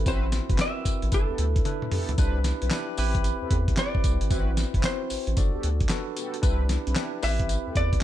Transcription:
0.06 analog synth bass A1, analog polysynth C4 E4 F#4 B4, tine electric piano C4 E4 F#4 C5, hollow-body jazz guitar C5, kick, closed hi-hat, tambourine
0.32 snare, closed hi-hat, tambourine
0.49 analog synth bass F#1, analog polysynth C4 E4 F#4 B4, kick, closed hi-hat
0.58 tine electric piano C4 E4 F#4 A#4, hollow-body jazz guitar E5, snare, clap, closed hi-hat, tambourine
0.66 tine electric piano B4
0.85 analog synth bass A1, kick, closed hi-hat, tambourine
1.02 analog synth bass A1, closed hi-hat
1.12 analog synth bass G1, tine electric piano D4 E4 A4 B4, hollow-body jazz guitar A4, kick, closed hi-hat, tambourine
1.29 analog synth bass D2, analog polysynth B3 E4 G4 A4
1.38 analog synth bass D2, closed hi-hat
1.56 kick, closed hi-hat
1.65 tine electric piano D4 E4 A4 B4, closed hi-hat, high tom
1.82 mid tom
1.91 analog polysynth B3 E4 G4 A4, mid tom, open hi-hat
2.09 closed hi-hat, floor tom
2.17 analog synth bass C2, analog polysynth C4 D4 E4 B4, tine electric piano D4 E4 G4 B4, kick, closed hi-hat, tambourine
2.44 snare, closed hi-hat, tambourine
2.61 analog synth bass B1, analog polysynth C4 D4 E4 B4, closed hi-hat
2.70 tine electric piano D4 E4 G4 B4, snare, clap, closed hi-hat, tambourine
2.97 analog synth bass A1, tine electric piano C4 E4 G4 B4, open hi-hat, tambourine
3.15 kick, closed hi-hat
3.24 closed hi-hat, tambourine
3.41 analog synth bass E2, analog polysynth C4 G4 A4 B4
3.51 analog synth bass E2, kick, closed hi-hat
3.68 kick, closed hi-hat
3.77 tine electric piano C4 E4 G4 B4, hollow-body jazz guitar D5, snare, clap, closed hi-hat, tambourine
3.95 kick
4.04 analog synth bass C2, kick, closed hi-hat, tambourine
4.21 analog synth bass G#1, closed hi-hat
4.30 analog synth bass A1, analog polysynth C4 E4 F#4 B4, tine electric piano C4 E4 F#4 B4, kick, closed hi-hat, tambourine
4.57 snare, closed hi-hat, tambourine
4.74 analog synth bass F#1, analog polysynth C4 E4 F#4 B4, kick, closed hi-hat
4.83 tine electric piano C4 E4 F#4 C5, hollow-body jazz guitar C5, snare, clap, closed hi-hat, tambourine
5.10 analog synth bass A1, open hi-hat, tambourine
5.27 analog synth bass A1, closed hi-hat
5.36 analog synth bass G1, tine electric piano D4 F#4 A4 D5, kick, closed hi-hat, tambourine
5.53 analog synth bass D2, analog polysynth B3 F#4 G4 A4
5.63 analog synth bass D2, closed hi-hat
5.80 kick, closed hi-hat
5.89 tine electric piano D4 F#4 A4 B4, snare, clap, closed hi-hat, tambourine
6.16 analog polysynth B3 F#4 G4 A4, closed hi-hat, tambourine
6.34 closed hi-hat
6.42 analog synth bass C2, analog polysynth C4 D4 E4 B4, tine electric piano D4 E4 G4 B4, kick, closed hi-hat, tambourine
6.69 snare, closed hi-hat, tambourine
6.86 analog synth bass B1, analog polysynth C4 D4 E4 B4, closed hi-hat
6.95 tine electric piano D4 E4 G4 B4, snare, clap, closed hi-hat, tambourine
7.22 analog synth bass A1, tine electric piano C4 E4 G4 B4, hollow-body jazz guitar E5, open hi-hat, tambourine
7.40 kick, closed hi-hat
7.49 closed hi-hat, tambourine
7.66 analog synth bass E2, analog polysynth C4 G4 A4 B4
7.75 analog synth bass E2, hollow-body jazz guitar D5, kick, closed hi-hat
7.93 kick, closed hi-hat

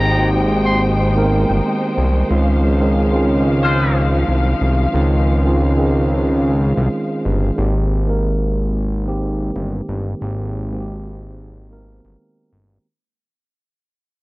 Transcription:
Already playing: analog synth bass G#1, tine electric piano D#3 G#3 A#3 C4 G4, string section G#3 D#4 C5 G5
0.00 muted trumpet A#5
0.16 tine electric piano D#3 G#3 A#3 C4 F#4
0.26 tine electric piano G4
0.65 muted trumpet C6
1.15 tine electric piano D#3 G#3 A#3 B3 A#4
1.24 tine electric piano C4
1.50 analog synth bass G1
1.98 analog synth bass C2
2.28 analog synth bass C#2, tine electric piano D#3 G#3 C4 C#4 F4, string section F3 F5
2.80 tine electric piano D#3 G#3 C4 C#4 D#4
3.12 tine electric piano D#3 G#3 C4 C#4 F4
3.63 horn section G#3 F4 C5
4.28 analog synth bass C2
4.61 analog synth bass C2
4.93 analog synth bass C#2, tine electric piano D#3 G#3 C4 C#4 F4
5.45 tine electric piano D#3 G#3 C4 C#4 F4
5.77 tine electric piano D#3 G#3 C4 C#4 G#4
6.77 analog synth bass C2
7.25 analog synth bass G1
7.56 analog synth bass G#1, tine electric piano D#3 G#3 A#3 C4 G4
8.07 tine electric piano D#3 G#3 A#3 C4 A#4
9.05 tine electric piano D#3 G#3 A#3 C4 G4
9.56 analog synth bass G1
9.89 analog synth bass G1
10.20 analog synth bass G#1, tine electric piano D#3 G#3 A#3 C4 G4
10.71 tine electric piano D#3 G#3 A#3 C4 F#4
10.81 tine electric piano G4
11.70 tine electric piano D#3 G#3 A#3 B3 A#4
11.78 tine electric piano C4
12.05 analog synth bass G1
12.53 analog synth bass G1

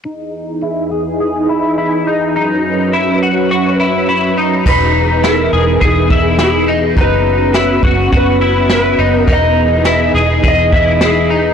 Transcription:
0.05 string machine E2 E3 D#4 G#4, clean electric guitar D#4
0.62 clean electric guitar E4
0.91 clean electric guitar G#4
1.20 clean electric guitar G#4
1.49 clean electric guitar E4
1.78 clean electric guitar E4
2.07 clean electric guitar D#4
2.34 string machine F#2 F#3 C#4 B4, clean electric guitar D#4
2.93 clean electric guitar E4
3.23 clean electric guitar F#4
3.51 clean electric guitar F#4
3.80 clean electric guitar E4
4.09 clean electric guitar E4
4.38 clean electric guitar D#4
4.66 fingered electric bass E1, string machine E3 B3 D#4 G#4, clean electric guitar D#4, electric slide guitar B4, kick, crash
5.23 clean electric guitar E4, electric slide guitar A#4, snare, closed hi-hat
5.53 fingered electric bass E1, clean electric guitar G#4
5.81 fingered electric bass E1, clean electric guitar G#4, electric slide guitar G#4, kick, closed hi-hat
6.10 clean electric guitar E4, kick
6.39 clean electric guitar E4, snare, closed hi-hat
6.43 electric slide guitar G#4
6.68 clean electric guitar D#4
6.97 fingered electric bass F#1, string machine B3 C#4 F#4, clean electric guitar D#4, kick, closed hi-hat
7.01 electric slide guitar B4
7.54 clean electric guitar E4, snare, closed hi-hat
7.83 fingered electric bass F#1, clean electric guitar F#4, kick
8.12 fingered electric bass F#1, clean electric guitar F#4, kick, closed hi-hat
8.17 electric slide guitar B4
8.41 clean electric guitar E4
8.70 clean electric guitar E4, snare, closed hi-hat
8.75 electric slide guitar B4
8.99 fingered electric bass F#1, clean electric guitar D#4
9.16 electric slide guitar A#4
9.27 fingered electric bass E1, string machine E3 D#4 G#4, clean electric guitar D#4, kick, closed hi-hat
9.32 electric slide guitar D#5
9.85 clean electric guitar E4, snare, closed hi-hat
10.14 fingered electric bass E1, clean electric guitar G#4
10.44 fingered electric bass E1, clean electric guitar G#4, kick, closed hi-hat
10.48 electric slide guitar D#5
10.72 clean electric guitar E4, kick
11.01 clean electric guitar E4, snare, closed hi-hat
11.05 electric slide guitar G#4
11.30 clean electric guitar D#4

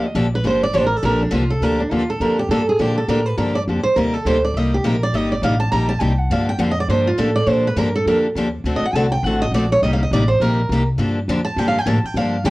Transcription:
Already playing: upright bass D2
0.05 steel-string acoustic guitar D#5
0.15 upright bass A#1, steel-string acoustic guitar D3 F3 A#3 D4 G4 D5
0.35 steel-string acoustic guitar B4
0.44 upright bass G1, steel-string acoustic guitar D3 F3 A#3 D4 G4 C5
0.63 steel-string acoustic guitar D5
0.73 upright bass A1, steel-string acoustic guitar D3 F3 A#3 D4 G4 C5
0.86 steel-string acoustic guitar A#4
0.96 steel-string acoustic guitar A4
1.02 upright bass A#1, steel-string acoustic guitar D3 F3 A#3 D4 G4 A#4
1.22 steel-string acoustic guitar D4
1.31 upright bass C2, steel-string acoustic guitar D3 F3 A#3 D4 F4 G4
1.50 steel-string acoustic guitar A4
1.61 upright bass D2, steel-string acoustic guitar D3 F3 A#3 D4 G4 A#4
1.80 steel-string acoustic guitar D4
1.91 upright bass D#2, steel-string acoustic guitar D3 F3 A#3 D4 F4 G4
2.10 steel-string acoustic guitar A4
2.20 upright bass F2, steel-string acoustic guitar D3 F3 A#3 D4 G4 A#4
2.39 steel-string acoustic guitar G4
2.49 upright bass G2, steel-string acoustic guitar D3 F3 A#3 D4 G4 A4
2.69 steel-string acoustic guitar G#4
2.79 upright bass A#2, steel-string acoustic guitar D3 F3 A#3 D4 G4
2.98 steel-string acoustic guitar A4
3.08 upright bass A2, steel-string acoustic guitar D3 F3 A#3 D4 G4 A#4
3.26 steel-string acoustic guitar B4
3.38 upright bass G2, steel-string acoustic guitar D3 F3 A#3 D4 G4 A#4
3.55 steel-string acoustic guitar D5
3.68 upright bass F2, steel-string acoustic guitar D3 F3 A#3 D4 G4
3.84 steel-string acoustic guitar C5, muted upright bass stroke
3.96 upright bass D#2, steel-string acoustic guitar C3 G3 A#3 D#4 G4 A#4
4.14 steel-string acoustic guitar A4
4.25 upright bass D2, steel-string acoustic guitar C3 G3 A#3 D#4 G4 C5
4.45 steel-string acoustic guitar D5
4.54 upright bass C2, steel-string acoustic guitar C3 G3 A#3 D#4 G4 D#5
4.74 steel-string acoustic guitar G4
4.84 upright bass A#1, steel-string acoustic guitar C3 G3 A#3 D#4 G4 A#4
5.03 steel-string acoustic guitar D5
5.13 upright bass G1, steel-string acoustic guitar C3 G3 A#3 D#4 G4 D#5
5.32 steel-string acoustic guitar D5
5.42 upright bass A1, steel-string acoustic guitar C3 G3 A#3 D#4 G4 F5
5.60 steel-string acoustic guitar A5
5.72 upright bass A#1, steel-string acoustic guitar C3 G3 A#3 D#4 G4 A#5
5.89 steel-string acoustic guitar A5
6.00 upright bass C2, steel-string acoustic guitar C3 G3 A#3 D#4 G4 G5
6.19 steel-string acoustic guitar F#5
6.30 upright bass G2, steel-string acoustic guitar D3 F3 A#3 D4 G4 F5
6.49 steel-string acoustic guitar G5
6.58 upright bass F2, steel-string acoustic guitar D3 F3 A#3 D4 G4 F5
6.71 steel-string acoustic guitar D#5
6.80 steel-string acoustic guitar D5
6.88 upright bass G2, steel-string acoustic guitar D3 F3 A#3 D4 G4 C5
7.07 steel-string acoustic guitar F4
7.18 upright bass A2, steel-string acoustic guitar D3 F3 A#3 D4 G4 A4
7.36 steel-string acoustic guitar D5
7.47 upright bass A#2, steel-string acoustic guitar D3 F3 A#3 D4 G4 C5
7.67 steel-string acoustic guitar B4
7.76 upright bass G2, steel-string acoustic guitar D3 F3 A#3 D4 G4 A#4
7.95 steel-string acoustic guitar A4
8.06 upright bass F2, steel-string acoustic guitar D3 F3 A#3 D4 G4 A#4
8.35 upright bass D#2, steel-string acoustic guitar D3 F3 A#3 D4 G4
8.64 upright bass D2, steel-string acoustic guitar D3 A3 C4 F#4 A4
8.76 steel-string acoustic guitar D#5
8.82 steel-string acoustic guitar F#5, muted upright bass stroke
8.93 upright bass C2, steel-string acoustic guitar D3 A3 C4 F#4 A4 A5
9.12 steel-string acoustic guitar G5
9.23 upright bass A1, steel-string acoustic guitar D3 A3 C4 F#4 F#5
9.27 steel-string acoustic guitar A4
9.42 steel-string acoustic guitar D#5
9.52 upright bass A#1, steel-string acoustic guitar D3 A3 C4 A4 D5
9.56 steel-string acoustic guitar F#4
9.72 steel-string acoustic guitar C#5
9.82 upright bass C2, steel-string acoustic guitar C3 G3 A#3 D#4 G4 D#5
9.93 steel-string acoustic guitar F5
10.03 steel-string acoustic guitar D#5
10.11 upright bass A1, steel-string acoustic guitar C3 G3 A#3 D#4 G4 D5
10.28 steel-string acoustic guitar C5
10.40 upright bass A#1, steel-string acoustic guitar C3 G3 A#3 D#4 G4 A#4
10.69 upright bass C2, steel-string acoustic guitar C3 G3 A#3 D#4 G4
10.98 upright bass G2, steel-string acoustic guitar D3 F3 A#3 D4 G4
11.28 upright bass F2, steel-string acoustic guitar D3 F3 A#3 D4 G4
11.45 steel-string acoustic guitar A5
11.56 upright bass G2, steel-string acoustic guitar D3 F3 A#3 D4 G4 G5
11.68 steel-string acoustic guitar F5
11.78 steel-string acoustic guitar G5
11.86 upright bass A2, steel-string acoustic guitar D3 F3 A#3 D4 G4 A5
12.03 steel-string acoustic guitar G5, muted upright bass stroke
12.14 upright bass G2, steel-string acoustic guitar D3 F3 A#3 D4 G4 F5
12.44 upright bass F2, steel-string acoustic guitar D3 F3 A#3 D4 G4 G5

